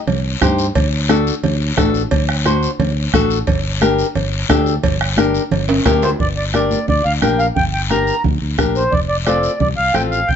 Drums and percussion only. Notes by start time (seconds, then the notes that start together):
0.07 cowbell, high conga, low conga, long guiro
0.41 bombo low, bombo rim, high conga, low conga, short guiro
0.59 short guiro
0.75 bombo low, cowbell, high conga, low conga, long guiro
1.09 bombo rim, high conga, short guiro
1.27 short guiro
1.44 cowbell, high conga, low conga, long guiro
1.77 bombo low, bombo rim, high conga, low conga, low timbale, short guiro
1.94 short guiro
2.11 bombo low, cowbell, high conga, low conga, long guiro
2.29 bombo rim
2.45 bombo rim, high conga, short guiro
2.63 short guiro
2.80 cowbell, high conga, low conga, long guiro
3.14 bombo low, bombo rim, high conga, low conga, short guiro
3.30 short guiro
3.47 bombo low, cowbell, high conga, low conga, long guiro
3.81 bombo rim, high conga, short guiro
3.99 short guiro
4.15 cowbell, high conga, low conga, long guiro
4.49 bombo low, bombo rim, high conga, low timbale, short guiro
4.66 short guiro
4.83 bombo low, cowbell, high conga, low conga, long guiro
5.01 bombo rim
5.17 bombo rim, high conga, short guiro
5.34 short guiro
5.51 cowbell, high conga, low conga, long guiro
5.69 high timbale
5.85 bombo low, bombo rim, high conga, high timbale, short guiro
6.02 low timbale, short guiro
6.20 bombo low, low conga, long guiro
6.54 bombo rim, high conga, short guiro
6.71 high conga, short guiro
6.88 bombo low, low conga, long guiro
7.22 bombo rim, high conga, low conga, short guiro
7.39 short guiro
7.56 bombo low, low conga, long guiro
7.90 bombo rim, high conga, short guiro
8.07 short guiro
8.24 bombo low, low conga, long guiro
8.58 bombo low, bombo rim, high conga, low conga, short guiro
8.75 short guiro
8.92 bombo low, low conga, long guiro
9.26 bombo rim, high conga, short guiro
9.43 short guiro
9.60 bombo low, low conga, long guiro
9.94 bombo rim, high conga, low conga, short guiro
10.12 short guiro
10.29 bombo low, low conga, long guiro